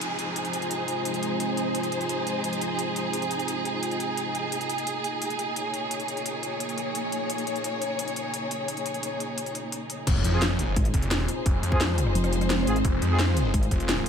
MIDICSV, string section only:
0, 0, Header, 1, 2, 480
1, 0, Start_track
1, 0, Key_signature, -4, "minor"
1, 0, Tempo, 346821
1, 500, Time_signature, 4, 2, 24, 8
1, 19498, End_track
2, 0, Start_track
2, 0, Title_t, "String section"
2, 0, Program_c, 0, 48
2, 0, Note_on_c, 0, 53, 69
2, 0, Note_on_c, 0, 63, 77
2, 0, Note_on_c, 0, 68, 90
2, 203, Note_on_c, 0, 72, 78
2, 6258, Note_on_c, 0, 58, 67
2, 6259, Note_off_c, 0, 72, 0
2, 6260, Note_off_c, 0, 53, 0
2, 7718, Note_on_c, 0, 73, 84
2, 13921, Note_off_c, 0, 63, 0
2, 13937, Note_on_c, 0, 63, 74
2, 13938, Note_off_c, 0, 73, 0
2, 13939, Note_off_c, 0, 68, 0
2, 14331, Note_on_c, 0, 68, 88
2, 14558, Note_on_c, 0, 72, 87
2, 15041, Note_off_c, 0, 58, 0
2, 19498, Note_off_c, 0, 63, 0
2, 19498, Note_off_c, 0, 68, 0
2, 19498, Note_off_c, 0, 72, 0
2, 19498, End_track
0, 0, End_of_file